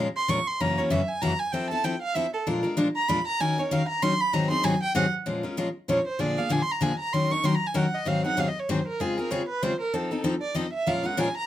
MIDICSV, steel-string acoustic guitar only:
0, 0, Header, 1, 2, 480
1, 0, Start_track
1, 0, Tempo, 311203
1, 901, Time_signature, 3, 2, 24, 8
1, 17684, End_track
2, 0, Start_track
2, 0, Title_t, "Steel-string acoustic guitar"
2, 0, Program_c, 0, 25
2, 437, Note_on_c, 0, 46, 91
2, 439, Note_on_c, 0, 53, 80
2, 449, Note_on_c, 0, 56, 88
2, 449, Note_on_c, 0, 61, 101
2, 451, Note_on_c, 0, 70, 99
2, 454, Note_on_c, 0, 65, 95
2, 588, Note_off_c, 0, 46, 0
2, 590, Note_off_c, 0, 53, 0
2, 595, Note_off_c, 0, 56, 0
2, 595, Note_off_c, 0, 61, 0
2, 596, Note_off_c, 0, 70, 0
2, 597, Note_off_c, 0, 65, 0
2, 931, Note_on_c, 0, 52, 62
2, 933, Note_on_c, 0, 42, 74
2, 934, Note_on_c, 0, 49, 70
2, 935, Note_on_c, 0, 58, 81
2, 937, Note_on_c, 0, 61, 77
2, 945, Note_on_c, 0, 66, 70
2, 1176, Note_off_c, 0, 66, 0
2, 1183, Note_off_c, 0, 52, 0
2, 1184, Note_off_c, 0, 42, 0
2, 1185, Note_off_c, 0, 49, 0
2, 1185, Note_off_c, 0, 58, 0
2, 1186, Note_off_c, 0, 61, 0
2, 1195, Note_on_c, 0, 66, 51
2, 1203, Note_on_c, 0, 61, 46
2, 1222, Note_on_c, 0, 58, 51
2, 1228, Note_on_c, 0, 52, 51
2, 1381, Note_off_c, 0, 66, 0
2, 1382, Note_off_c, 0, 52, 0
2, 1385, Note_off_c, 0, 61, 0
2, 1393, Note_on_c, 0, 42, 88
2, 1394, Note_on_c, 0, 49, 97
2, 1395, Note_off_c, 0, 58, 0
2, 1401, Note_on_c, 0, 52, 84
2, 1411, Note_on_c, 0, 61, 90
2, 1412, Note_on_c, 0, 66, 86
2, 1414, Note_on_c, 0, 58, 85
2, 1547, Note_off_c, 0, 42, 0
2, 1548, Note_off_c, 0, 49, 0
2, 1551, Note_off_c, 0, 52, 0
2, 1556, Note_off_c, 0, 61, 0
2, 1557, Note_off_c, 0, 66, 0
2, 1558, Note_off_c, 0, 58, 0
2, 1877, Note_on_c, 0, 42, 84
2, 1891, Note_on_c, 0, 52, 76
2, 1891, Note_on_c, 0, 61, 89
2, 1892, Note_on_c, 0, 49, 84
2, 1893, Note_on_c, 0, 58, 92
2, 1901, Note_on_c, 0, 66, 88
2, 2030, Note_off_c, 0, 42, 0
2, 2037, Note_off_c, 0, 49, 0
2, 2037, Note_off_c, 0, 52, 0
2, 2037, Note_off_c, 0, 61, 0
2, 2038, Note_off_c, 0, 58, 0
2, 2042, Note_off_c, 0, 66, 0
2, 2358, Note_on_c, 0, 53, 66
2, 2369, Note_on_c, 0, 60, 79
2, 2370, Note_on_c, 0, 64, 70
2, 2374, Note_on_c, 0, 69, 72
2, 2617, Note_off_c, 0, 53, 0
2, 2622, Note_off_c, 0, 69, 0
2, 2623, Note_off_c, 0, 60, 0
2, 2623, Note_off_c, 0, 64, 0
2, 2640, Note_on_c, 0, 69, 59
2, 2657, Note_on_c, 0, 64, 55
2, 2664, Note_on_c, 0, 60, 49
2, 2825, Note_off_c, 0, 60, 0
2, 2825, Note_off_c, 0, 64, 0
2, 2825, Note_off_c, 0, 69, 0
2, 2835, Note_on_c, 0, 53, 79
2, 2843, Note_on_c, 0, 60, 93
2, 2844, Note_on_c, 0, 64, 88
2, 2853, Note_on_c, 0, 69, 94
2, 2989, Note_off_c, 0, 53, 0
2, 2993, Note_off_c, 0, 60, 0
2, 2994, Note_off_c, 0, 64, 0
2, 2998, Note_off_c, 0, 69, 0
2, 3317, Note_on_c, 0, 53, 81
2, 3324, Note_on_c, 0, 60, 85
2, 3334, Note_on_c, 0, 64, 96
2, 3339, Note_on_c, 0, 69, 100
2, 3470, Note_off_c, 0, 53, 0
2, 3474, Note_off_c, 0, 60, 0
2, 3479, Note_off_c, 0, 64, 0
2, 3481, Note_off_c, 0, 69, 0
2, 3804, Note_on_c, 0, 56, 65
2, 3805, Note_on_c, 0, 53, 69
2, 3810, Note_on_c, 0, 46, 68
2, 3810, Note_on_c, 0, 65, 78
2, 3813, Note_on_c, 0, 62, 78
2, 3815, Note_on_c, 0, 70, 68
2, 4035, Note_off_c, 0, 70, 0
2, 4050, Note_off_c, 0, 65, 0
2, 4054, Note_on_c, 0, 70, 62
2, 4060, Note_off_c, 0, 62, 0
2, 4061, Note_off_c, 0, 53, 0
2, 4061, Note_off_c, 0, 56, 0
2, 4064, Note_off_c, 0, 46, 0
2, 4069, Note_on_c, 0, 65, 52
2, 4078, Note_on_c, 0, 62, 48
2, 4083, Note_on_c, 0, 56, 44
2, 4252, Note_off_c, 0, 70, 0
2, 4256, Note_off_c, 0, 56, 0
2, 4259, Note_off_c, 0, 62, 0
2, 4260, Note_off_c, 0, 65, 0
2, 4268, Note_on_c, 0, 53, 86
2, 4270, Note_on_c, 0, 46, 84
2, 4274, Note_on_c, 0, 56, 81
2, 4278, Note_on_c, 0, 62, 101
2, 4281, Note_on_c, 0, 65, 95
2, 4287, Note_on_c, 0, 70, 102
2, 4426, Note_off_c, 0, 53, 0
2, 4427, Note_off_c, 0, 46, 0
2, 4429, Note_off_c, 0, 56, 0
2, 4431, Note_off_c, 0, 62, 0
2, 4433, Note_off_c, 0, 65, 0
2, 4436, Note_off_c, 0, 70, 0
2, 4758, Note_on_c, 0, 46, 89
2, 4769, Note_on_c, 0, 56, 83
2, 4770, Note_on_c, 0, 53, 94
2, 4770, Note_on_c, 0, 65, 102
2, 4773, Note_on_c, 0, 62, 93
2, 4775, Note_on_c, 0, 70, 92
2, 4912, Note_off_c, 0, 46, 0
2, 4917, Note_off_c, 0, 53, 0
2, 4917, Note_off_c, 0, 56, 0
2, 4917, Note_off_c, 0, 65, 0
2, 4919, Note_off_c, 0, 62, 0
2, 4920, Note_off_c, 0, 70, 0
2, 5246, Note_on_c, 0, 51, 65
2, 5252, Note_on_c, 0, 54, 77
2, 5252, Note_on_c, 0, 63, 74
2, 5254, Note_on_c, 0, 61, 67
2, 5260, Note_on_c, 0, 70, 84
2, 5502, Note_off_c, 0, 51, 0
2, 5504, Note_off_c, 0, 70, 0
2, 5505, Note_off_c, 0, 54, 0
2, 5505, Note_off_c, 0, 63, 0
2, 5506, Note_off_c, 0, 61, 0
2, 5523, Note_on_c, 0, 70, 50
2, 5542, Note_on_c, 0, 63, 47
2, 5554, Note_on_c, 0, 61, 52
2, 5707, Note_off_c, 0, 70, 0
2, 5714, Note_off_c, 0, 61, 0
2, 5716, Note_off_c, 0, 63, 0
2, 5726, Note_on_c, 0, 51, 75
2, 5726, Note_on_c, 0, 54, 95
2, 5732, Note_on_c, 0, 61, 87
2, 5735, Note_on_c, 0, 63, 90
2, 5744, Note_on_c, 0, 70, 94
2, 5875, Note_off_c, 0, 51, 0
2, 5876, Note_off_c, 0, 54, 0
2, 5878, Note_off_c, 0, 61, 0
2, 5880, Note_off_c, 0, 63, 0
2, 5885, Note_off_c, 0, 70, 0
2, 6205, Note_on_c, 0, 51, 95
2, 6207, Note_on_c, 0, 54, 104
2, 6211, Note_on_c, 0, 61, 96
2, 6219, Note_on_c, 0, 63, 93
2, 6222, Note_on_c, 0, 70, 87
2, 6355, Note_off_c, 0, 51, 0
2, 6356, Note_off_c, 0, 54, 0
2, 6358, Note_off_c, 0, 61, 0
2, 6362, Note_off_c, 0, 63, 0
2, 6363, Note_off_c, 0, 70, 0
2, 6678, Note_on_c, 0, 44, 72
2, 6683, Note_on_c, 0, 54, 73
2, 6686, Note_on_c, 0, 51, 74
2, 6690, Note_on_c, 0, 60, 83
2, 6692, Note_on_c, 0, 63, 71
2, 6692, Note_on_c, 0, 68, 78
2, 6926, Note_off_c, 0, 68, 0
2, 6936, Note_off_c, 0, 63, 0
2, 6938, Note_off_c, 0, 44, 0
2, 6941, Note_off_c, 0, 54, 0
2, 6942, Note_off_c, 0, 51, 0
2, 6944, Note_off_c, 0, 60, 0
2, 6945, Note_on_c, 0, 68, 62
2, 6955, Note_on_c, 0, 63, 59
2, 6969, Note_on_c, 0, 60, 53
2, 6975, Note_on_c, 0, 54, 45
2, 7134, Note_off_c, 0, 60, 0
2, 7136, Note_off_c, 0, 63, 0
2, 7138, Note_off_c, 0, 68, 0
2, 7139, Note_off_c, 0, 54, 0
2, 7146, Note_on_c, 0, 44, 97
2, 7152, Note_on_c, 0, 60, 95
2, 7154, Note_on_c, 0, 51, 96
2, 7155, Note_on_c, 0, 63, 107
2, 7158, Note_on_c, 0, 54, 105
2, 7159, Note_on_c, 0, 68, 101
2, 7306, Note_off_c, 0, 44, 0
2, 7309, Note_off_c, 0, 60, 0
2, 7310, Note_off_c, 0, 51, 0
2, 7310, Note_off_c, 0, 63, 0
2, 7311, Note_off_c, 0, 54, 0
2, 7312, Note_off_c, 0, 68, 0
2, 7630, Note_on_c, 0, 44, 99
2, 7630, Note_on_c, 0, 51, 100
2, 7637, Note_on_c, 0, 60, 103
2, 7640, Note_on_c, 0, 63, 100
2, 7642, Note_on_c, 0, 54, 94
2, 7649, Note_on_c, 0, 68, 101
2, 7787, Note_off_c, 0, 44, 0
2, 7788, Note_off_c, 0, 51, 0
2, 7791, Note_off_c, 0, 60, 0
2, 7793, Note_off_c, 0, 63, 0
2, 7794, Note_off_c, 0, 54, 0
2, 7797, Note_off_c, 0, 68, 0
2, 8110, Note_on_c, 0, 46, 63
2, 8113, Note_on_c, 0, 53, 68
2, 8118, Note_on_c, 0, 61, 68
2, 8120, Note_on_c, 0, 70, 71
2, 8121, Note_on_c, 0, 56, 68
2, 8130, Note_on_c, 0, 65, 65
2, 8360, Note_off_c, 0, 70, 0
2, 8374, Note_off_c, 0, 46, 0
2, 8375, Note_off_c, 0, 61, 0
2, 8376, Note_off_c, 0, 53, 0
2, 8376, Note_off_c, 0, 65, 0
2, 8378, Note_on_c, 0, 70, 52
2, 8380, Note_off_c, 0, 56, 0
2, 8394, Note_on_c, 0, 61, 48
2, 8395, Note_on_c, 0, 65, 51
2, 8405, Note_on_c, 0, 56, 39
2, 8575, Note_off_c, 0, 70, 0
2, 8583, Note_off_c, 0, 56, 0
2, 8583, Note_off_c, 0, 61, 0
2, 8583, Note_off_c, 0, 65, 0
2, 8593, Note_on_c, 0, 46, 74
2, 8598, Note_on_c, 0, 53, 86
2, 8601, Note_on_c, 0, 56, 85
2, 8606, Note_on_c, 0, 61, 83
2, 8608, Note_on_c, 0, 65, 92
2, 8612, Note_on_c, 0, 70, 92
2, 8750, Note_off_c, 0, 46, 0
2, 8752, Note_off_c, 0, 53, 0
2, 8754, Note_off_c, 0, 56, 0
2, 8756, Note_off_c, 0, 61, 0
2, 8757, Note_off_c, 0, 65, 0
2, 8759, Note_off_c, 0, 70, 0
2, 9073, Note_on_c, 0, 46, 80
2, 9079, Note_on_c, 0, 53, 86
2, 9085, Note_on_c, 0, 56, 82
2, 9088, Note_on_c, 0, 65, 84
2, 9088, Note_on_c, 0, 70, 96
2, 9091, Note_on_c, 0, 61, 96
2, 9229, Note_off_c, 0, 46, 0
2, 9233, Note_off_c, 0, 53, 0
2, 9236, Note_off_c, 0, 56, 0
2, 9237, Note_off_c, 0, 65, 0
2, 9237, Note_off_c, 0, 70, 0
2, 9239, Note_off_c, 0, 61, 0
2, 9543, Note_on_c, 0, 46, 60
2, 9547, Note_on_c, 0, 50, 71
2, 9548, Note_on_c, 0, 53, 66
2, 9555, Note_on_c, 0, 62, 72
2, 9557, Note_on_c, 0, 58, 72
2, 9561, Note_on_c, 0, 68, 78
2, 9812, Note_off_c, 0, 46, 0
2, 9813, Note_off_c, 0, 50, 0
2, 9814, Note_off_c, 0, 53, 0
2, 9814, Note_off_c, 0, 68, 0
2, 9817, Note_off_c, 0, 62, 0
2, 9818, Note_off_c, 0, 58, 0
2, 9832, Note_on_c, 0, 68, 53
2, 9846, Note_on_c, 0, 62, 48
2, 9854, Note_on_c, 0, 58, 43
2, 9868, Note_on_c, 0, 53, 47
2, 10008, Note_off_c, 0, 53, 0
2, 10010, Note_off_c, 0, 58, 0
2, 10013, Note_off_c, 0, 62, 0
2, 10017, Note_on_c, 0, 46, 76
2, 10019, Note_off_c, 0, 68, 0
2, 10027, Note_on_c, 0, 50, 93
2, 10027, Note_on_c, 0, 53, 84
2, 10029, Note_on_c, 0, 58, 92
2, 10032, Note_on_c, 0, 62, 87
2, 10037, Note_on_c, 0, 68, 83
2, 10182, Note_off_c, 0, 46, 0
2, 10186, Note_off_c, 0, 53, 0
2, 10187, Note_off_c, 0, 50, 0
2, 10188, Note_off_c, 0, 58, 0
2, 10189, Note_off_c, 0, 62, 0
2, 10192, Note_off_c, 0, 68, 0
2, 10498, Note_on_c, 0, 46, 70
2, 10499, Note_on_c, 0, 50, 89
2, 10511, Note_on_c, 0, 62, 98
2, 10514, Note_on_c, 0, 53, 87
2, 10515, Note_on_c, 0, 58, 96
2, 10526, Note_on_c, 0, 68, 89
2, 10662, Note_off_c, 0, 46, 0
2, 10663, Note_off_c, 0, 50, 0
2, 10669, Note_off_c, 0, 62, 0
2, 10670, Note_off_c, 0, 53, 0
2, 10671, Note_off_c, 0, 58, 0
2, 10676, Note_off_c, 0, 68, 0
2, 11005, Note_on_c, 0, 51, 67
2, 11009, Note_on_c, 0, 54, 71
2, 11016, Note_on_c, 0, 61, 81
2, 11020, Note_on_c, 0, 63, 66
2, 11020, Note_on_c, 0, 70, 70
2, 11256, Note_off_c, 0, 70, 0
2, 11263, Note_off_c, 0, 51, 0
2, 11264, Note_off_c, 0, 54, 0
2, 11266, Note_off_c, 0, 63, 0
2, 11268, Note_off_c, 0, 61, 0
2, 11275, Note_on_c, 0, 70, 53
2, 11284, Note_on_c, 0, 63, 53
2, 11301, Note_on_c, 0, 61, 46
2, 11461, Note_off_c, 0, 61, 0
2, 11464, Note_off_c, 0, 70, 0
2, 11469, Note_off_c, 0, 63, 0
2, 11469, Note_on_c, 0, 51, 91
2, 11479, Note_on_c, 0, 54, 94
2, 11479, Note_on_c, 0, 61, 83
2, 11485, Note_on_c, 0, 63, 84
2, 11490, Note_on_c, 0, 70, 99
2, 11628, Note_off_c, 0, 51, 0
2, 11633, Note_off_c, 0, 54, 0
2, 11633, Note_off_c, 0, 61, 0
2, 11636, Note_off_c, 0, 63, 0
2, 11638, Note_off_c, 0, 70, 0
2, 11940, Note_on_c, 0, 51, 93
2, 11947, Note_on_c, 0, 54, 96
2, 11950, Note_on_c, 0, 61, 93
2, 11953, Note_on_c, 0, 70, 90
2, 11956, Note_on_c, 0, 63, 91
2, 12103, Note_off_c, 0, 51, 0
2, 12107, Note_off_c, 0, 54, 0
2, 12108, Note_off_c, 0, 61, 0
2, 12110, Note_off_c, 0, 70, 0
2, 12111, Note_off_c, 0, 63, 0
2, 12421, Note_on_c, 0, 44, 62
2, 12426, Note_on_c, 0, 51, 61
2, 12434, Note_on_c, 0, 60, 80
2, 12436, Note_on_c, 0, 54, 78
2, 12444, Note_on_c, 0, 63, 75
2, 12446, Note_on_c, 0, 68, 77
2, 12690, Note_off_c, 0, 44, 0
2, 12693, Note_off_c, 0, 51, 0
2, 12697, Note_off_c, 0, 60, 0
2, 12697, Note_off_c, 0, 68, 0
2, 12698, Note_off_c, 0, 54, 0
2, 12702, Note_off_c, 0, 63, 0
2, 12715, Note_on_c, 0, 68, 59
2, 12720, Note_on_c, 0, 63, 54
2, 12734, Note_on_c, 0, 60, 51
2, 12739, Note_on_c, 0, 54, 47
2, 12894, Note_off_c, 0, 54, 0
2, 12899, Note_off_c, 0, 60, 0
2, 12904, Note_off_c, 0, 68, 0
2, 12906, Note_off_c, 0, 63, 0
2, 12907, Note_on_c, 0, 44, 84
2, 12912, Note_on_c, 0, 51, 75
2, 12912, Note_on_c, 0, 54, 86
2, 12918, Note_on_c, 0, 60, 82
2, 12922, Note_on_c, 0, 63, 87
2, 12926, Note_on_c, 0, 68, 96
2, 13066, Note_off_c, 0, 44, 0
2, 13069, Note_off_c, 0, 51, 0
2, 13069, Note_off_c, 0, 54, 0
2, 13072, Note_off_c, 0, 60, 0
2, 13074, Note_off_c, 0, 63, 0
2, 13076, Note_off_c, 0, 68, 0
2, 13401, Note_on_c, 0, 44, 79
2, 13404, Note_on_c, 0, 54, 87
2, 13405, Note_on_c, 0, 51, 78
2, 13409, Note_on_c, 0, 68, 97
2, 13411, Note_on_c, 0, 63, 82
2, 13412, Note_on_c, 0, 60, 84
2, 13553, Note_off_c, 0, 44, 0
2, 13555, Note_off_c, 0, 51, 0
2, 13555, Note_off_c, 0, 54, 0
2, 13557, Note_off_c, 0, 68, 0
2, 13558, Note_off_c, 0, 63, 0
2, 13559, Note_off_c, 0, 60, 0
2, 13880, Note_on_c, 0, 49, 63
2, 13882, Note_on_c, 0, 56, 74
2, 13894, Note_on_c, 0, 60, 68
2, 13897, Note_on_c, 0, 68, 78
2, 13898, Note_on_c, 0, 65, 80
2, 14135, Note_off_c, 0, 68, 0
2, 14139, Note_off_c, 0, 49, 0
2, 14140, Note_off_c, 0, 56, 0
2, 14146, Note_off_c, 0, 60, 0
2, 14148, Note_off_c, 0, 65, 0
2, 14154, Note_on_c, 0, 68, 58
2, 14169, Note_on_c, 0, 65, 52
2, 14181, Note_on_c, 0, 60, 46
2, 14342, Note_off_c, 0, 68, 0
2, 14344, Note_off_c, 0, 60, 0
2, 14350, Note_off_c, 0, 65, 0
2, 14354, Note_on_c, 0, 49, 83
2, 14363, Note_on_c, 0, 60, 88
2, 14369, Note_on_c, 0, 56, 87
2, 14369, Note_on_c, 0, 65, 88
2, 14372, Note_on_c, 0, 68, 93
2, 14509, Note_off_c, 0, 49, 0
2, 14514, Note_off_c, 0, 60, 0
2, 14516, Note_off_c, 0, 56, 0
2, 14517, Note_off_c, 0, 65, 0
2, 14518, Note_off_c, 0, 68, 0
2, 14847, Note_on_c, 0, 49, 87
2, 14849, Note_on_c, 0, 56, 83
2, 14849, Note_on_c, 0, 60, 87
2, 14857, Note_on_c, 0, 65, 83
2, 14858, Note_on_c, 0, 68, 96
2, 14995, Note_off_c, 0, 49, 0
2, 14997, Note_off_c, 0, 56, 0
2, 14997, Note_off_c, 0, 60, 0
2, 15000, Note_off_c, 0, 65, 0
2, 15001, Note_off_c, 0, 68, 0
2, 15325, Note_on_c, 0, 53, 69
2, 15326, Note_on_c, 0, 63, 82
2, 15330, Note_on_c, 0, 60, 68
2, 15340, Note_on_c, 0, 69, 74
2, 15576, Note_off_c, 0, 69, 0
2, 15580, Note_off_c, 0, 53, 0
2, 15581, Note_off_c, 0, 63, 0
2, 15583, Note_off_c, 0, 60, 0
2, 15595, Note_on_c, 0, 69, 55
2, 15606, Note_on_c, 0, 63, 60
2, 15620, Note_on_c, 0, 60, 44
2, 15775, Note_off_c, 0, 60, 0
2, 15780, Note_off_c, 0, 63, 0
2, 15781, Note_off_c, 0, 69, 0
2, 15793, Note_on_c, 0, 53, 81
2, 15794, Note_on_c, 0, 60, 91
2, 15799, Note_on_c, 0, 63, 91
2, 15803, Note_on_c, 0, 69, 96
2, 15948, Note_off_c, 0, 53, 0
2, 15948, Note_off_c, 0, 60, 0
2, 15950, Note_off_c, 0, 63, 0
2, 15953, Note_off_c, 0, 69, 0
2, 16265, Note_on_c, 0, 53, 85
2, 16276, Note_on_c, 0, 60, 93
2, 16284, Note_on_c, 0, 69, 93
2, 16287, Note_on_c, 0, 63, 85
2, 16423, Note_off_c, 0, 53, 0
2, 16428, Note_off_c, 0, 60, 0
2, 16433, Note_off_c, 0, 69, 0
2, 16434, Note_off_c, 0, 63, 0
2, 16758, Note_on_c, 0, 53, 80
2, 16762, Note_on_c, 0, 46, 73
2, 16768, Note_on_c, 0, 65, 88
2, 16769, Note_on_c, 0, 70, 83
2, 16770, Note_on_c, 0, 61, 70
2, 16771, Note_on_c, 0, 56, 75
2, 17002, Note_off_c, 0, 70, 0
2, 17013, Note_off_c, 0, 65, 0
2, 17015, Note_off_c, 0, 53, 0
2, 17017, Note_off_c, 0, 46, 0
2, 17020, Note_on_c, 0, 70, 59
2, 17021, Note_off_c, 0, 61, 0
2, 17022, Note_off_c, 0, 56, 0
2, 17032, Note_on_c, 0, 65, 55
2, 17040, Note_on_c, 0, 61, 52
2, 17054, Note_on_c, 0, 56, 52
2, 17213, Note_off_c, 0, 70, 0
2, 17218, Note_off_c, 0, 65, 0
2, 17222, Note_off_c, 0, 61, 0
2, 17225, Note_off_c, 0, 56, 0
2, 17232, Note_on_c, 0, 46, 93
2, 17232, Note_on_c, 0, 53, 96
2, 17239, Note_on_c, 0, 61, 102
2, 17242, Note_on_c, 0, 65, 115
2, 17243, Note_on_c, 0, 56, 97
2, 17251, Note_on_c, 0, 70, 111
2, 17385, Note_off_c, 0, 46, 0
2, 17386, Note_off_c, 0, 53, 0
2, 17389, Note_off_c, 0, 61, 0
2, 17390, Note_off_c, 0, 65, 0
2, 17391, Note_off_c, 0, 56, 0
2, 17395, Note_off_c, 0, 70, 0
2, 17684, End_track
0, 0, End_of_file